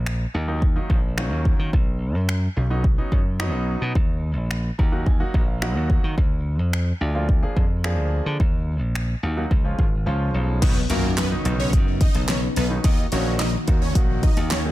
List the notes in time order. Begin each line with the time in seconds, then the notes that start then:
Already playing: A#1
0.06 finger snap
0.34 D#2 A#3 D#4
0.48 D#3 F#3 A#3 D#4
0.62 kick
0.76 D#3 F#3 A#3 D#4
0.90 A#1, kick
1.17 D#3 F#3 A#3 C#4, finger snap
1.32 D#2
1.45 kick
1.59 D#3
1.73 B1, kick
2.15 F#2
2.29 finger snap
2.56 B1 C#4 D#4
2.70 F#3 B3 C#4 D#4
2.84 kick
2.98 F#3 B3 C#4 D#4
3.12 F#2, kick
3.39 F#3 B3 C#4 D#4, finger snap
3.54 B1
3.81 B2
3.95 D#2, kick
4.37 A#1
4.51 finger snap
4.78 D#2 D#4 F#4 A#5, kick
4.92 F#3 A#3 D#4 F#4 F#5
5.06 G#5, kick
5.20 F#3 A#3 D#4 F#4 F#5
5.34 A#1, kick
5.48 F5
5.62 F#3 A#3 D#4 F#4 F#5, finger snap
5.76 D#2 D#5
5.90 kick
6.04 D#3
6.18 D2, kick
6.59 F2
6.73 finger snap
7.01 D2 D4 F4
7.15 F3 A#3 D4 F4
7.29 kick
7.42 F3 A#3 D4 G#4
7.56 F2, kick
7.84 F3 A#3 D4 G#4, finger snap
7.98 D2
8.26 D3
8.40 D#2, kick
8.82 A#1
8.95 finger snap
9.23 D#2 D#4 F#4
9.37 F#3 A#3 D#4 F#4
9.51 C#2, kick
9.64 F3 G#3 C#4 F4
9.79 G#1, kick
10.06 C#2 F3 G#3 C#4 F4
10.34 B1
10.62 C#3 D#3 F#3 B3 C#4 D#4 B4, kick, closed hi-hat, crash, impact
10.89 F#2 D#3 F#3 A#3 B3 C#4 F4 A#4, closed hi-hat
11.17 B3 B4, snare, clap, closed hi-hat
11.31 D#3 F#3 B3 C#4 D#4
11.45 B1, closed hi-hat
11.60 C#4 C#5
11.73 F#2, kick, closed hi-hat
12.01 D#4 D#5, kick, closed hi-hat
12.15 B1, closed hi-hat
12.28 C#4 C#5, snare, clap, closed hi-hat
12.56 B1 B3 B4, closed hi-hat
12.70 D#3 F#3 B3 C#4 D#4
12.84 D#2 D#3 A#3 D#4 F#4 D#5, kick, closed hi-hat
13.12 A#1 D#3 F#3 A#3 C#4 D#4 F#4 C#5, closed hi-hat
13.40 D#4 D#5, snare, clap, closed hi-hat
13.67 D#2 D#3 F#3 A#3 D#4 F#4, kick, closed hi-hat
13.82 C#4 C#5
13.95 A#1 D#3 F#3 A#3 D#4 F#4, kick, closed hi-hat
14.23 D#4 D#5, kick, closed hi-hat
14.37 D#2, closed hi-hat
14.51 C#4 C#5, snare, clap, closed hi-hat
14.65 D#3 F#3 A#3 D#4 G#4